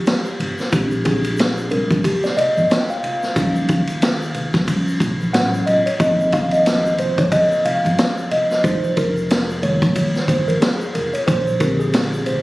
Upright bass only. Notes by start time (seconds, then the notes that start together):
0.40 G1
0.73 A#1
1.91 G#1
2.57 G1
3.36 D#2
4.54 C#2
5.01 A#1
5.34 A1
5.67 A1
6.00 G#1
7.18 G1
7.85 G1
8.64 F1
9.82 A#1
10.28 G1
10.95 F1
11.28 A#1